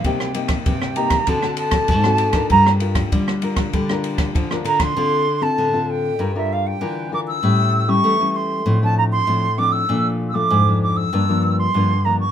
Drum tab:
RD |x-xxx-xxx-xxx-xx|x-xxx-xxx-xxx-xx|----------------|----------------|
SD |-r-r-r-r-r-r-r-r|-r-r-r-r-r-r-r-r|----------------|----------------|
BD |o--oo--oo--oo--o|o--oo--oo--oo--o|----------------|----------------|

RD |----------------|
SD |----------------|
BD |----------------|